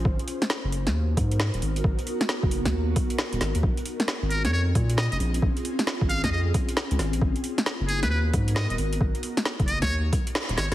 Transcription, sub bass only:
X:1
M:4/4
L:1/16
Q:"Swing 16ths" 1/4=134
K:Abdor
V:1 name="Sub bass" clef=bass
A,,, z4 G,,,2 E,,3 A,,3 E,,, A,,,2 | A,,, z4 G,,,2 E,,3 z3 E,,, A,,, E,, | B,,, z4 A,,,2 F,,3 B,,3 F,,, B,,,2 | B,,, z4 A,,,2 F,,3 z3 D,, A,,, B,,, |
A,,, z4 G,,,2 E,,3 A,,3 E,,, A,,,2 | z4 z G,,,2 E,,3 z3 E,,, A,,, E,, |]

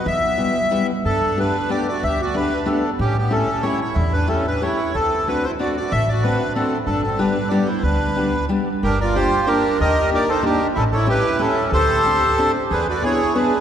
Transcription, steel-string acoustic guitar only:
X:1
M:3/4
L:1/8
Q:"Swing" 1/4=185
K:Em
V:1 name="Steel-string acoustic guitar"
z2 [G,B,EG] z [G,B,EG] z | [K:G] z2 [A,B,DG] z [A,B,DG] z | z2 [A,B,DG] z [A,B,DG] z | z2 [A,^CEG] z [A,CEG] z |
z2 [A,^CEG] z [A,CEG] z | z2 [A,CDF] z [A,CDF] z | z2 [A,CDF] z [A,CDF] z | z2 [G,B,DG] z [G,B,DG] z |
z2 [G,B,DG] z [G,B,DG] z | [K:Dphr] z2 [B,DFG] z [B,DFG] z | z2 [B,DEG] z [B,DEG] z | z2 [A,^C=EG] z [A,CEG] z |
z2 [A,CDG] z [A,CDG] z | z2 [=B,D=E^G] z [B,DEG] z |]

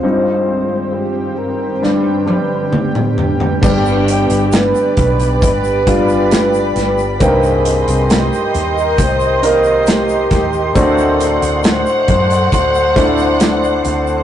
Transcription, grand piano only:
X:1
M:4/4
L:1/8
Q:1/4=67
K:Gphr
V:1 name="Grand piano"
[G,CE]4 [G,=B,D] [G,B,D]3 | [G,=B,DG]4 z [G,B,DF]3 | [B,CEg]4 z [B,CEB]3 | [=A,CD^F]4 z [A,CD=E]3 |]
V:2 name="Grand piano" clef=bass
G,,3 z [G,,D,]3 z | [G,,D,]3 z4 z | G,,3 z4 z | =A,,3 z4 z |]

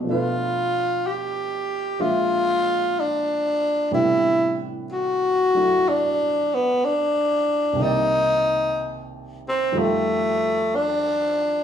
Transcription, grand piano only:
X:1
M:4/4
L:1/8
Q:"Swing" 1/4=62
K:Ador
V:1 name="Grand piano" clef=bass
[B,,=F,A,DB]4 [^A,,^E,^G,D=e]4 | [A,,C,E,G,B,D]3 [F,A,DE]4- [F,A,DE] | [C,,C,_E,_B,d]4 [=F,,E,G,A,=F]4 |]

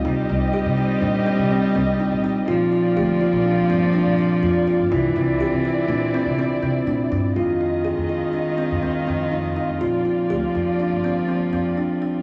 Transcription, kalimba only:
X:1
M:5/4
L:1/8
Q:1/4=123
K:Fdor
V:1 name="Kalimba"
E E G E D C C C E E | F F G F D C D D F F | =E E G E D C C C D D | F F A F D C C C E E |
F F G F D C C C D D |]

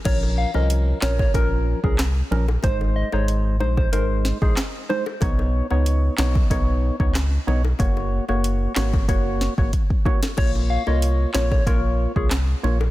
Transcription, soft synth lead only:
X:1
M:4/4
L:1/16
Q:1/4=93
K:Bbm
V:1 name="Soft synth lead"
d z f e z2 d d B z2 A z4 | c z e d z2 c c B z2 A z2 c z | z16 | z16 |
d z f e z2 d d B z2 A z4 |]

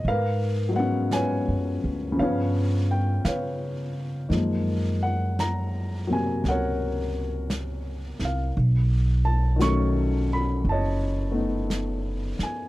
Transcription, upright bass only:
X:1
M:4/4
L:1/8
Q:"Swing" 1/4=56
K:Gblyd
V:1 name="Upright bass" clef=bass
A,,2- (3A,, G,, =D,, =G,,2 ^C,2 | G,,4 D,,3 C,, | =B,,,4 ^F,,,3 z |]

